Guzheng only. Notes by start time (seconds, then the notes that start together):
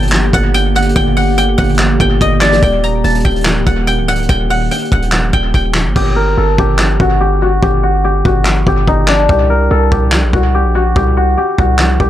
Already playing: G5 A5
0.34 F#5
0.54 G5
0.76 F#5
0.96 G5
1.17 F#5
1.38 G5
1.58 F#5
2.00 G5
2.21 D#5
2.41 D5
2.63 G5
2.84 A#5
3.04 A5
3.25 G5
3.66 F#5
3.87 G5
4.08 F#5
4.29 G5
4.50 F#5
4.71 G5
4.92 F#5
5.33 G5
5.54 G5
5.96 G4
6.16 A#4
6.38 A4
6.59 G4
7.01 F#4
7.21 G4
7.42 F#4
7.62 G4
7.83 F#4
8.04 G4
8.25 F#4
8.68 G4
8.88 D#4
9.08 D4
9.30 G4
9.50 A#4
9.71 A4
9.92 G4
10.33 F#4
10.55 G4
10.75 F#4
10.96 G4
11.17 F#4
11.37 G4
11.59 F#4
12.00 G4